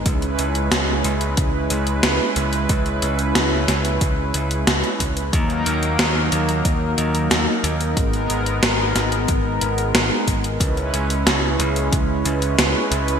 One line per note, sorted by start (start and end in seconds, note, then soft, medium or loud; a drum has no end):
0.00 5.29 G#3 medium
0.05 0.35 C#2 loud
0.05 5.29 C#4 medium
0.05 5.29 E4 medium
0.05 5.29 B4 medium
0.05 kick loud
0.05 closed hi-hat medium
0.22 closed hi-hat soft
0.39 0.68 C#2 medium
0.39 closed hi-hat medium
0.55 closed hi-hat medium
0.72 1.01 C#2 medium
0.72 snare loud
0.72 closed hi-hat medium
1.04 1.34 C#2 loud
1.04 closed hi-hat medium
1.21 closed hi-hat medium
1.37 1.67 C#2 medium
1.37 kick loud
1.37 closed hi-hat medium
1.70 2.00 C#2 medium
1.70 closed hi-hat medium
1.87 closed hi-hat medium
2.03 2.18 C#2 medium
2.03 snare loud
2.03 closed hi-hat medium
2.36 2.66 C#2 medium
2.36 closed hi-hat medium
2.53 closed hi-hat medium
2.69 2.99 C#2 loud
2.69 kick loud
2.69 closed hi-hat medium
2.86 closed hi-hat soft
3.02 3.32 C#2 medium
3.02 closed hi-hat medium
3.19 closed hi-hat soft
3.35 3.65 C#2 medium
3.35 snare loud
3.35 closed hi-hat medium
3.68 3.98 C#2 medium
3.68 snare medium
3.68 closed hi-hat medium
3.85 closed hi-hat medium
4.01 4.31 C#2 medium
4.01 kick loud
4.01 closed hi-hat medium
4.34 4.64 C#2 medium
4.34 closed hi-hat medium
4.51 closed hi-hat medium
4.67 4.82 C#2 medium
4.67 snare loud
4.67 closed hi-hat medium
4.84 closed hi-hat soft
5.00 5.30 C#2 medium
5.00 kick medium
5.00 closed hi-hat medium
5.17 closed hi-hat soft
5.33 5.63 D#2 loud
5.33 7.94 F#3 medium
5.33 7.94 A#3 medium
5.33 10.56 D#4 medium
5.33 7.94 A#4 medium
5.33 kick loud
5.33 closed hi-hat medium
5.50 closed hi-hat soft
5.66 5.96 D#2 medium
5.66 closed hi-hat medium
5.83 closed hi-hat soft
5.99 6.29 D#2 medium
5.99 snare loud
5.99 closed hi-hat medium
6.32 6.62 D#2 loud
6.32 closed hi-hat medium
6.49 closed hi-hat soft
6.65 6.95 D#2 medium
6.65 kick loud
6.65 closed hi-hat medium
6.98 7.28 D#2 medium
6.98 closed hi-hat medium
7.15 closed hi-hat soft
7.31 7.46 D#2 medium
7.31 snare loud
7.31 closed hi-hat medium
7.64 7.94 D#2 medium
7.64 closed hi-hat medium
7.81 closed hi-hat soft
7.97 8.27 G#1 loud
7.97 13.20 G#3 medium
7.97 10.58 B3 medium
7.97 10.58 A#4 medium
7.97 kick loud
7.97 closed hi-hat medium
8.13 closed hi-hat soft
8.30 8.59 G#1 medium
8.30 closed hi-hat medium
8.46 closed hi-hat soft
8.63 8.92 G#1 medium
8.63 snare loud
8.63 closed hi-hat medium
8.96 9.25 G#1 loud
8.96 snare medium
8.96 closed hi-hat medium
9.12 closed hi-hat soft
9.28 9.58 G#1 medium
9.28 kick loud
9.28 closed hi-hat medium
9.61 9.91 G#1 medium
9.61 closed hi-hat medium
9.78 closed hi-hat soft
9.94 10.09 G#1 medium
9.94 snare loud
9.94 closed hi-hat medium
10.27 10.57 G#1 medium
10.27 kick medium
10.27 closed hi-hat medium
10.44 closed hi-hat soft
10.60 10.90 C#2 loud
10.60 13.20 C#4 medium
10.60 13.20 E4 medium
10.60 13.20 B4 medium
10.60 kick loud
10.60 closed hi-hat medium
10.77 closed hi-hat soft
10.93 11.23 C#2 medium
10.93 closed hi-hat medium
11.10 closed hi-hat medium
11.26 11.56 C#2 medium
11.26 snare loud
11.26 closed hi-hat medium
11.59 11.89 C#2 loud
11.59 closed hi-hat medium
11.76 closed hi-hat medium
11.92 12.22 C#2 medium
11.92 kick loud
11.92 closed hi-hat medium
12.25 12.55 C#2 medium
12.25 closed hi-hat medium
12.42 closed hi-hat soft
12.58 12.73 C#2 medium
12.58 snare loud
12.58 closed hi-hat medium
12.91 13.20 C#2 medium
12.91 closed hi-hat medium
13.08 closed hi-hat medium